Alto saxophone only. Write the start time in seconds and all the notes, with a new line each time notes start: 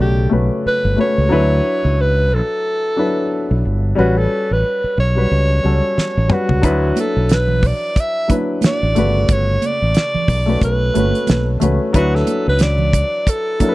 0.01 G4
0.67 B4
1.01 C#5
2.01 B4
2.34 A4
3.99 F#4
4.18 A4
4.53 B4
5.00 C#5
6.33 F#4
7.00 A4
7.33 B4
7.67 D5
8.00 E5
8.66 D5
9.32 C#5
9.66 D5
10.64 B4
11.96 F#4
12.16 A4
12.49 B4
12.63 D5
13.29 A4